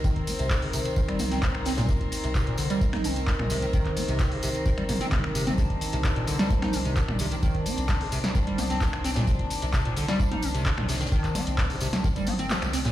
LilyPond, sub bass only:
\new Staff \with { instrumentName = "Sub bass" } { \clef bass \time 4/4 \key c \minor \tempo 4 = 130 c,16 r8 c,8 r16 c,16 r16 g,,16 r16 c,8 r16 c,8 r16 | c,16 r8 c,8 r16 c,16 r16 g,,16 r16 c,8 r16 c,8 r16 | c,16 r8 c,8 r16 c,16 r16 g,,16 r16 g,,16 r8 g,,8 r16 | c,16 r8 c,8 r16 c,16 r16 g,,16 r16 c,8 r16 c,8 r16 |
c,16 r8 c,8 r16 c,16 r16 g,,16 r16 c,8 r16 c,8 r16 | c,16 r8 c,8 r16 c,16 r16 g,,16 r16 c,8 r16 c,8 r16 | c,16 r8 c,8 r16 c,16 r16 g,,16 r16 g,,8 r16 c,8 r16 | }